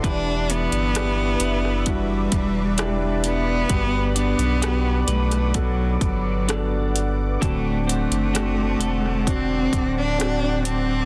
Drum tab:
HH |x-xxx-x-x-x-x-x-|x-xxx-xxx-x-x-x-|x-xxx-x-x-x-x-x-|
SD |----r--r----r---|----r--r----r---|----r--r----r---|
BD |o-------o-o-----|o-------o-o-----|o-------o-o-----|